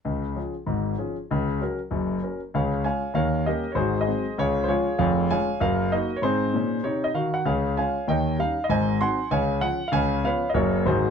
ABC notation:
X:1
M:4/4
L:1/16
Q:"Swing" 1/4=194
K:Db
V:1 name="Grand piano"
z16 | z16 | [Adf]4 [dfa]4 [Bdf]4 [=GBe]3 d | [GAc]3 [Ace]4- [Ace] [FAd]3 c [FAd]4 |
[Adf]4 [dfa]4 [Bf]4 [GBe]3 d | [EAc]8 d2 e2 f2 g2 | [Adf]4 [dfa]4 [de=g]4 f3 e | [cea]4 [gac']4 [dfa]4 g3 f |
[dfa]4 [_cdf]3 e [GBd]4 [GA=c]4 |]
V:2 name="Grand piano" clef=bass
[D,,D,]4 [F,DA]4 [A,,,A,,]4 [F,DA]4 | [D,,D,]4 [G,DB]4 [G,,,G,,]4 [G,DB]4 | [D,,D,]4 [A,DF]4 [E,,E,]4 [=G,B,D]4 | [A,,,A,,]4 [G,A,C]4 [D,,D,]4 [F,A,D]4 |
[F,,,F,,]4 [F,A,D]4 [G,,,G,,]4 [B,E]4 | [A,,C]4 [B,,D]4 [C,E]4 [E,G]4 | [D,,D,]4 [A,DF]4 [E,,E,]4 [=G,DE]4 | [A,,,A,,]4 [G,CE]4 [D,,D,]4 [F,D]4 |
[D,,D,]4 [F,_CD]4 [G,,,G,,G,B,D]4 [A,,,A,,G,A,B,]4 |]